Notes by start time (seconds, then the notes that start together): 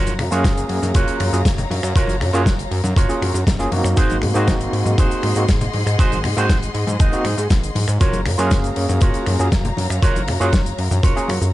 Already playing: F#1 F#3 F4 F#4 A#4 C#5 F5 A#5
0.07 closed hi-hat, high conga, cabasa, shaker
0.19 F#2, finger snap, open hi-hat, high bongo, low conga
0.31 F#2 A#3 C#4 F4 F#4 G#4 A#4 C#5 F5, closed hi-hat, cabasa, shaker
0.44 F#1, kick, snare, closed hi-hat, high conga, cabasa, shaker
0.57 closed hi-hat, cabasa, shaker
0.69 F#2, muted clean electric guitar stroke, open hi-hat
0.82 F#2, closed hi-hat, high conga, cabasa, shaker
0.94 F#1 F4 F#4 A#4 C#5, kick, closed hi-hat, cabasa, shaker
1.07 closed hi-hat, cabasa, shaker
1.20 F#2, finger snap, open hi-hat, high conga
1.33 F#2 A#3 C#4 F4 G#4, closed hi-hat, cabasa, shaker
1.45 F#1, kick, snare, closed hi-hat, cabasa, shaker
1.58 closed hi-hat, low conga, cabasa, shaker
1.70 F#2, open hi-hat, high conga
1.82 F#2, finger snap, muted clean electric guitar stroke, closed hi-hat, cabasa, shaker
1.95 F#1 F4 F#4 A#4 C#5, kick, closed hi-hat, cabasa, shaker
2.07 closed hi-hat, high conga, cabasa, shaker
2.21 F#2, finger snap, open hi-hat, high bongo, low conga
2.33 F#2 A#3 C#4 F4 F#4 G#4 A#4 C#5, closed hi-hat, cabasa, shaker
2.46 F#1, kick, snare, closed hi-hat, high conga, cabasa, shaker
2.59 closed hi-hat, cabasa, shaker
2.71 F#2, muted clean electric guitar stroke, open hi-hat
2.84 F#2, closed hi-hat, high conga, cabasa, shaker
2.96 F#1 F4 F#4 A#4 C#5, kick, closed hi-hat, cabasa, shaker
3.09 A#3 C#4 F4 G#4, closed hi-hat, cabasa, shaker
3.22 F#2, finger snap, open hi-hat, high conga
3.34 F#2, closed hi-hat, high bongo, cabasa, shaker
3.47 F#1, kick, snare, closed hi-hat, low conga, cabasa, shaker
3.59 A#3 C#4 F4 G#4, closed hi-hat, cabasa, shaker
3.71 F#2 A#3 C4 D#4 F#4, open hi-hat, high conga
3.84 F#2, finger snap, muted clean electric guitar stroke, closed hi-hat, cabasa, shaker
3.96 G#1 D#4 F#4 G#4 C5 D#5 F#5 C6, kick, closed hi-hat, cabasa, shaker
4.10 closed hi-hat, high conga, cabasa, shaker
4.22 G#2, finger snap, open hi-hat, high bongo, low conga
4.34 G#2 A#3 C4 D#4 F#4 G#4 C5, closed hi-hat, cabasa, shaker
4.47 G#1, kick, snare, closed hi-hat, high conga, cabasa, shaker
4.60 closed hi-hat, cabasa, shaker
4.72 G#2, muted clean electric guitar stroke, open hi-hat
4.86 G#2, closed hi-hat, high conga, cabasa, shaker
4.98 G#1 D#4 F#4 G#4 C5, kick, closed hi-hat, cabasa, shaker
5.11 closed hi-hat, cabasa, shaker
5.23 G#2, finger snap, open hi-hat, high conga
5.36 G#2 A#3 C4 D#4 F#4, closed hi-hat, cabasa, shaker
5.48 G#1, kick, snare, closed hi-hat, cabasa, shaker
5.61 closed hi-hat, low conga, cabasa, shaker
5.73 G#2, open hi-hat, high conga
5.86 G#2, finger snap, muted clean electric guitar stroke, closed hi-hat, cabasa, shaker
5.98 G#1 D#4 F#4 G#4 C5, kick, closed hi-hat, cabasa, shaker
6.12 closed hi-hat, high conga, cabasa, shaker
6.24 G#2, finger snap, open hi-hat, high bongo, low conga
6.37 G#2 A#3 C4 D#4 F#4 G#4 C5, closed hi-hat, cabasa, shaker
6.50 G#1, kick, snare, closed hi-hat, high conga, cabasa, shaker
6.62 closed hi-hat, cabasa, shaker
6.74 G#2, muted clean electric guitar stroke, open hi-hat
6.87 G#2, closed hi-hat, high conga, cabasa, shaker
6.99 G#1 D#4 F#4 G#4 D#5, kick, closed hi-hat, cabasa, shaker
7.12 A#3 C4 D#4 F#4, closed hi-hat, cabasa, shaker
7.25 G#2, finger snap, open hi-hat, high conga
7.38 G#2, closed hi-hat, high bongo, cabasa, shaker
7.49 G#1, kick, snare, closed hi-hat, low conga, cabasa, shaker
7.63 closed hi-hat, cabasa, shaker
7.75 G#2, open hi-hat, high conga
7.87 G#2, finger snap, muted clean electric guitar stroke, closed hi-hat, cabasa, shaker
8.00 F#1 F#3 F4 F#4 A#4 C#5 F5 A#5, kick, closed hi-hat, cabasa, shaker
8.13 closed hi-hat, high conga, cabasa, shaker
8.26 F#2, finger snap, open hi-hat, high bongo, low conga
8.38 F#2 A#3 C#4 F4 F#4 G#4 A#4 C#5 F5, closed hi-hat, cabasa, shaker
8.51 F#1, kick, snare, closed hi-hat, high conga, cabasa, shaker
8.64 closed hi-hat, cabasa, shaker
8.76 F#2, muted clean electric guitar stroke, open hi-hat
8.89 F#2, closed hi-hat, high conga, cabasa, shaker
9.01 F#1 F4 F#4 A#4 C#5, kick, closed hi-hat, cabasa, shaker
9.14 closed hi-hat, cabasa, shaker
9.26 F#2, finger snap, open hi-hat, high conga
9.39 F#2 A#3 C#4 F4 G#4, closed hi-hat, cabasa, shaker
9.52 F#1, kick, snare, closed hi-hat, cabasa, shaker
9.65 closed hi-hat, low conga, cabasa, shaker
9.77 F#2, open hi-hat, high conga
9.89 F#2, finger snap, muted clean electric guitar stroke, closed hi-hat, cabasa, shaker
10.02 F#1 F4 F#4 A#4 C#5, kick, closed hi-hat, cabasa, shaker
10.15 closed hi-hat, high conga, cabasa, shaker
10.28 F#2, finger snap, open hi-hat, high bongo, low conga
10.40 F#2 A#3 C#4 F4 F#4 G#4 A#4 C#5, closed hi-hat, cabasa, shaker
10.53 F#1, kick, snare, closed hi-hat, high conga, cabasa, shaker
10.66 closed hi-hat, cabasa, shaker
10.78 F#2, muted clean electric guitar stroke, open hi-hat
10.91 F#2, closed hi-hat, high conga, cabasa, shaker
11.03 F#1 F4 F#4 A#4 C#5, kick, closed hi-hat, cabasa, shaker
11.16 A#3 C#4 F4 G#4, closed hi-hat, cabasa, shaker
11.28 F#2, finger snap, open hi-hat, high conga
11.41 F#2, closed hi-hat, high bongo, cabasa, shaker